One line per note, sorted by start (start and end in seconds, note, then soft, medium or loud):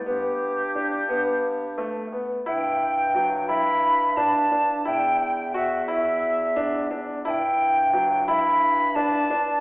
0.05 2.28 G2 medium
0.05 0.58 B3 medium
0.05 1.73 G4 medium
0.75 1.01 D4 medium
1.09 1.61 B3 medium
1.78 2.04 A3 medium
2.12 2.38 B3 medium
2.45 4.82 G2 medium
2.45 2.98 E4 medium
2.45 3.45 G5 medium
3.14 3.41 F#3 medium
3.48 4.01 E4 medium
3.48 4.18 B5 loud
4.17 4.43 D4 medium
4.17 4.85 A5 medium
4.51 4.78 D4 medium
4.85 7.21 E2 medium
4.85 5.38 E4 medium
4.85 5.18 G5 medium
5.21 5.52 G5 medium
5.54 5.81 F#4 medium
5.54 5.87 E5 medium
5.88 6.41 E4 medium
5.88 6.88 E5 medium
6.56 6.83 D4 medium
6.91 7.17 D4 medium
7.25 9.60 G2 medium
7.25 7.78 E4 medium
7.25 7.30 A5 medium
7.29 8.24 G5 medium
7.93 8.20 F#3 medium
8.27 8.80 E4 medium
8.27 8.97 B5 medium
8.95 9.22 D4 medium
8.95 9.60 A5 medium
9.30 9.57 D4 medium